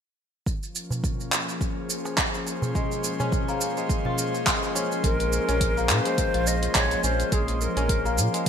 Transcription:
0.46 8.49 F3 medium
0.46 kick medium
0.46 shaker soft
0.63 8.49 C#4 medium
0.63 shaker soft
0.68 8.49 A#3 medium
0.75 shaker medium
0.91 darbuka dum medium
0.91 shaker soft
1.04 kick medium
1.04 shaker soft
1.20 shaker soft
1.29 8.49 G#4 medium
1.29 clap medium
1.33 shaker medium
1.49 darbuka ka soft
1.49 shaker soft
1.57 8.49 C5 medium
1.61 kick medium
1.61 shaker soft
1.90 shaker medium
2.05 darbuka tek medium
2.05 shaker soft
2.18 kick medium
2.18 clap medium
2.18 shaker soft
2.34 shaker soft
2.46 darbuka ka soft
2.46 shaker medium
2.62 darbuka dum medium
2.62 shaker soft
2.75 3.76 G#3 medium
2.75 kick medium
2.75 shaker soft
2.92 shaker soft
3.04 shaker medium
3.20 4.75 C#4 medium
3.20 darbuka dum medium
3.20 shaker soft
3.32 kick loud
3.32 shaker soft
3.48 5.41 A#3 medium
3.48 shaker soft
3.61 shaker medium
3.77 4.45 G#3 medium
3.77 darbuka ka soft
3.77 shaker soft
3.89 kick loud
3.89 shaker soft
4.05 5.57 F4 medium
4.05 darbuka ka soft
4.05 darbuka dum medium
4.18 shaker medium
4.34 darbuka ka soft
4.34 shaker soft
4.47 5.03 G#3 medium
4.47 kick loud
4.47 clap medium
4.47 shaker soft
4.63 shaker soft
4.75 5.48 C#4 medium
4.75 darbuka ka medium
4.75 shaker medium
4.92 shaker soft
5.04 5.39 A#1 loud
5.04 6.04 G#3 medium
5.04 5.92 A#4 medium
5.04 kick loud
5.04 closed hi-hat medium
5.04 shaker soft
5.20 closed hi-hat soft
5.20 shaker soft
5.33 shaker medium
5.48 5.91 A#1 medium
5.48 7.03 C#4 medium
5.48 closed hi-hat soft
5.48 shaker soft
5.61 kick medium
5.61 closed hi-hat medium
5.61 shaker soft
5.77 7.70 A#3 medium
5.77 shaker soft
5.89 6.00 A#2 medium
5.89 6.49 C5 loud
5.89 clap medium
5.89 shaker medium
6.05 6.74 G#3 medium
6.05 closed hi-hat soft
6.05 shaker soft
6.18 kick loud
6.18 closed hi-hat medium
6.18 shaker soft
6.34 6.68 A#1 medium
6.34 7.86 F4 medium
6.34 closed hi-hat soft
6.47 6.75 D#5 medium
6.47 shaker medium
6.63 closed hi-hat soft
6.63 shaker soft
6.75 6.95 A#1 loud
6.75 7.31 G#3 medium
6.75 7.02 C#5 loud
6.75 kick loud
6.75 clap medium
6.75 closed hi-hat medium
6.75 shaker soft
6.91 closed hi-hat soft
6.91 shaker soft
7.04 7.24 A#1 loud
7.04 7.76 C#4 medium
7.04 7.34 C5 medium
7.04 shaker medium
7.20 closed hi-hat soft
7.20 shaker soft
7.32 7.68 A#1 medium
7.32 8.33 G#3 medium
7.32 7.63 G#4 medium
7.32 kick medium
7.32 closed hi-hat medium
7.32 shaker soft
7.48 closed hi-hat soft
7.48 shaker soft
7.61 8.18 A#4 medium
7.61 shaker medium
7.77 8.19 A#1 medium
7.77 8.49 C#4 medium
7.77 closed hi-hat soft
7.77 shaker soft
7.89 kick loud
7.89 closed hi-hat medium
7.89 shaker soft
8.05 8.49 A#3 medium
8.05 shaker soft
8.18 8.28 A#2 medium
8.18 shaker medium
8.34 8.49 G#3 medium
8.34 closed hi-hat soft
8.34 shaker soft

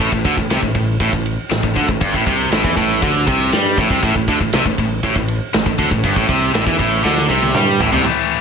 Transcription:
0.00 0.12 A1 medium
0.00 0.12 A2 medium
0.00 kick loud
0.00 ride medium
0.12 0.24 A1 medium
0.12 0.24 A2 medium
0.12 kick medium
0.25 0.37 D2 medium
0.25 0.37 D3 loud
0.25 kick medium
0.25 ride medium
0.37 0.50 A1 medium
0.37 0.50 A2 medium
0.37 kick medium
0.50 0.62 C2 loud
0.50 0.62 C3 loud
0.50 snare loud
0.50 ride loud
0.62 0.75 A1 medium
0.62 0.74 A2 medium
0.62 kick medium
0.75 0.99 A1 medium
0.75 0.96 A2 medium
0.75 kick medium
0.75 ride medium
1.00 1.12 A1 medium
1.00 1.11 A2 loud
1.00 kick loud
1.00 ride loud
1.13 1.37 A1 medium
1.13 1.33 A2 medium
1.13 kick medium
1.26 ride medium
1.50 1.63 A1 medium
1.50 1.62 A2 medium
1.50 snare loud
1.50 ride medium
1.63 1.75 A1 medium
1.63 1.75 A2 medium
1.63 kick medium
1.75 1.88 D2 medium
1.75 1.87 D3 loud
1.75 kick medium
1.75 snare soft
1.75 ride medium
1.88 2.01 A1 medium
1.88 2.01 A2 medium
1.88 kick medium
2.01 2.13 G1 loud
2.01 2.13 G2 loud
2.01 kick medium
2.01 ride medium
2.14 2.26 A1 medium
2.14 2.26 A2 loud
2.14 kick medium
2.26 2.50 C2 medium
2.26 2.51 C3 loud
2.26 kick medium
2.26 ride medium
2.51 2.63 A1 medium
2.51 2.64 A2 loud
2.51 snare loud
2.51 ride medium
2.64 2.76 E2 medium
2.64 2.77 E3 loud
2.64 kick loud
2.77 3.01 A1 loud
2.77 3.02 A2 loud
2.77 kick medium
2.77 ride medium
3.02 3.26 D2 medium
3.02 3.27 D3 loud
3.02 kick loud
3.02 ride medium
3.27 3.51 C2 medium
3.27 3.52 C3 loud
3.27 kick loud
3.27 ride medium
3.52 3.76 G2 medium
3.52 3.77 G3 loud
3.52 snare loud
3.52 ride medium
3.78 3.90 A1 medium
3.78 3.90 A2 loud
3.78 kick loud
3.78 snare soft
3.78 ride medium
3.90 4.02 C2 loud
3.90 4.02 C3 loud
3.90 kick medium
4.02 4.15 A1 loud
4.02 4.15 A2 medium
4.02 kick medium
4.02 ride medium
4.15 4.27 A1 medium
4.15 4.28 A2 medium
4.15 kick medium
4.28 4.40 D2 loud
4.28 4.40 D3 loud
4.28 kick medium
4.28 ride medium
4.41 4.53 A1 medium
4.41 4.53 A2 medium
4.41 kick medium
4.53 4.65 C2 loud
4.53 4.66 C3 loud
4.53 snare loud
4.53 ride loud
4.66 4.78 A1 medium
4.66 4.78 A2 medium
4.66 kick medium
4.78 5.02 A1 medium
4.78 4.99 A2 medium
4.78 kick medium
4.78 ride medium
5.03 5.15 A1 medium
5.03 5.16 A2 loud
5.03 kick loud
5.03 ride loud
5.16 5.39 A1 medium
5.16 5.37 A2 medium
5.16 kick medium
5.28 ride medium
5.54 5.66 A1 medium
5.54 5.65 A2 medium
5.54 snare loud
5.54 ride medium
5.66 5.78 A1 medium
5.66 5.78 A2 medium
5.66 kick medium
5.78 5.91 D2 medium
5.78 5.90 D3 loud
5.78 kick medium
5.78 ride medium
5.91 6.03 A1 medium
5.91 6.04 A2 medium
5.91 kick medium
6.03 6.16 G1 loud
6.03 6.16 G2 medium
6.03 kick loud
6.03 ride medium
6.16 6.28 A1 medium
6.16 6.29 A2 loud
6.16 kick medium
6.29 6.52 C2 loud
6.29 6.53 C3 loud
6.29 kick medium
6.29 ride medium
6.54 6.66 A1 medium
6.54 6.66 A2 loud
6.54 snare loud
6.54 ride medium
6.66 6.79 E2 medium
6.66 6.78 E3 loud
6.66 kick loud
6.79 7.03 A1 medium
6.79 7.04 A2 loud
6.79 kick medium
6.79 ride medium
7.05 7.28 D2 medium
7.05 7.29 D3 loud
7.05 snare medium
7.18 snare medium
7.30 7.53 C2 medium
7.30 7.54 C3 loud
7.42 high tom medium
7.55 7.78 G2 medium
7.55 7.79 G3 loud
7.55 mid tom medium
7.80 7.92 A1 loud
7.80 7.92 A2 loud
7.80 floor tom medium
7.92 8.04 C2 loud
7.92 8.03 C3 loud
7.92 floor tom medium
8.04 8.41 A2 medium
8.04 8.41 E3 medium
8.04 8.41 A3 loud

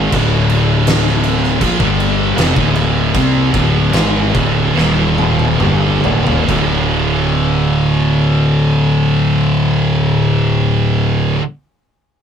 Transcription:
0.00 0.11 G#2 loud
0.00 0.11 D#3 loud
0.00 0.12 G#3 loud
0.12 1.57 D1 loud
0.12 1.60 D2 medium
0.12 1.60 A2 loud
0.12 1.61 D3 loud
0.12 kick loud
0.12 crash medium
0.49 crash medium
0.87 snare loud
0.87 crash loud
1.07 snare soft
1.24 crash medium
1.43 snare soft
1.61 1.79 A#1 loud
1.61 1.79 A#2 loud
1.61 1.79 F3 loud
1.61 kick loud
1.61 crash medium
1.80 2.33 G1 medium
1.80 2.36 G2 loud
1.80 2.36 D3 loud
1.80 2.36 G3 loud
1.80 kick loud
2.00 crash medium
2.36 2.55 F1 loud
2.36 2.55 F2 medium
2.36 2.55 C3 loud
2.36 snare loud
2.36 crash medium
2.56 3.11 D1 medium
2.56 3.14 D2 medium
2.56 3.14 A2 loud
2.56 3.14 D3 loud
2.56 kick loud
2.75 crash medium
3.14 3.51 C2 loud
3.14 3.53 C3 loud
3.14 3.53 G3 loud
3.14 3.53 C4 loud
3.14 kick loud
3.14 crash medium
3.53 3.91 D1 loud
3.53 3.93 D2 medium
3.53 3.93 A2 loud
3.53 3.93 D3 loud
3.53 kick loud
3.53 crash medium
3.93 4.31 G#1 loud
3.93 4.33 G#2 loud
3.93 4.33 D#3 loud
3.93 4.34 G#3 loud
3.93 snare loud
3.93 crash medium
4.34 4.73 D1 loud
4.34 4.76 D2 loud
4.34 4.76 A2 loud
4.34 4.77 D3 loud
4.34 kick loud
4.34 crash medium
4.76 5.57 D#1 medium
4.76 5.59 D#2 loud
4.76 5.59 A#2 loud
4.76 5.60 D#3 loud
4.76 snare medium
5.18 high tom medium
5.39 high tom medium
5.60 6.01 G1 loud
5.60 6.02 G2 medium
5.60 6.02 D3 medium
5.60 6.03 G3 loud
5.60 mid tom medium
6.03 6.24 D1 loud
6.03 6.25 D2 medium
6.03 6.25 A2 loud
6.03 floor tom loud
6.26 6.47 D#1 medium
6.26 6.46 D#2 loud
6.26 6.47 A#2 loud
6.26 floor tom medium
6.47 11.35 D1 loud
6.47 11.37 D2 medium
6.47 11.40 A2 loud
6.47 kick loud
6.47 crash medium
6.51 11.41 D3 loud

